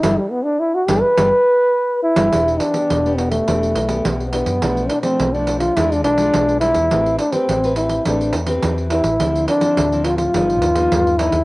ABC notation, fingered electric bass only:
X:1
M:4/4
L:1/16
Q:1/4=105
K:G
V:1 name="Fingered electric bass" clef=bass
G,,, z4 z G,,, z G,,, z6 G,,, | [K:Em] E,,,2 z2 E,,,4 E,,,2 B,,,2 B,,,3 F,, | B,,,2 z2 B,,,4 E,,2 B,,,2 B,,,3 E,, | A,,,2 z2 A,,,4 A,,,2 E,,2 E,,3 A,,, |
D,,2 z2 D,,4 G,,,2 ^D,,2 D,,3 D,, |]